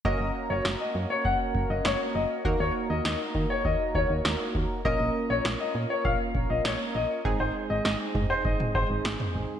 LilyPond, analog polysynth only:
\new Staff \with { instrumentName = "Analog polysynth" } { \time 4/4 \key ges \lydian \tempo 4 = 100 <bes des' ges' bes'>1 | <bes ees' ges' bes'>1 | <bes des' f' bes'>1 | <aes c' ees' aes'>1 | }